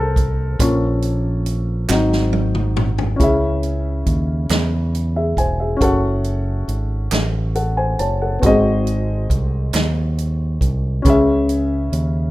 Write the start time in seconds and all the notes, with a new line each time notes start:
Already playing: C2 D#3 C4 A4 A#4 C5
0.16 kick, closed hi-hat
0.60 A#1 F3 A#3 C#4, kick, closed hi-hat
1.02 closed hi-hat
1.46 closed hi-hat
1.89 G#1 F#3 C4 D#4, snare, clap
2.13 snare
2.33 high tom
2.55 mid tom
2.77 mid tom
2.98 floor tom
3.16 C#2 C#4 E4, kick
3.20 C#3 G#4 E5, closed hi-hat
3.63 closed hi-hat
4.06 D#2, kick, closed hi-hat
4.49 E2, snare, clap, closed hi-hat
4.95 closed hi-hat
5.16 G#4 E5
5.37 E1 C5 G#5, kick, closed hi-hat
5.60 G#4 E5
5.77 C#4 F#4
5.81 F#1 A4 F#5, kick, closed hi-hat
6.24 closed hi-hat
6.68 G#1, closed hi-hat
7.11 A1, snare, clap, closed hi-hat
7.55 A4 F#5, closed hi-hat
7.77 C5 G#5
7.99 F#1 C#5 A5, closed hi-hat
8.22 A4 F#5
8.39 G#1 G#2 B3 F#4, kick, closed hi-hat
8.44 C4 G#4 D#5
8.87 closed hi-hat
9.30 C2, kick, closed hi-hat
9.73 D#2, snare, clap, closed hi-hat
10.18 closed hi-hat
10.61 C2, kick, closed hi-hat
11.02 C#2 C#3 C#4, kick, closed hi-hat
11.07 G#4 E5
11.49 closed hi-hat
11.92 D#2, closed hi-hat